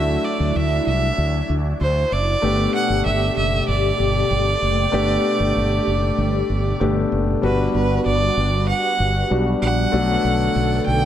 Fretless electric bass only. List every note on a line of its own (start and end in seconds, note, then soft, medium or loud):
0.00 0.16 D2 loud
0.40 0.51 D2 medium
0.55 0.78 D2 loud
0.87 1.09 C2 medium
1.18 1.41 D2 medium
1.49 1.72 D2 medium
1.81 2.03 D2 loud
2.12 2.34 F#1 medium
2.43 2.66 G1 loud
2.90 3.01 G1 medium
3.05 3.28 G1 loud
3.37 3.59 F#1 medium
3.68 3.91 G1 medium
3.99 4.22 G1 medium
4.31 4.53 G1 loud
4.62 4.84 F#1 medium
4.93 5.16 G1 loud
5.40 5.51 G1 medium
5.56 5.78 G1 medium
5.87 6.09 F#1 medium
6.18 6.41 G1 loud
6.49 6.72 G1 medium
6.81 7.03 G1 loud
7.12 7.34 F#1 medium
7.43 7.66 G1 loud
7.74 7.97 G1 loud
8.06 8.28 G1 medium
8.37 8.71 G1 medium
9.00 9.22 G1 medium
9.31 9.53 B1 medium
9.62 9.84 A#1 medium
9.93 10.16 B1 loud
10.24 10.47 B1 medium
10.56 10.78 B1 loud
10.87 11.05 B1 medium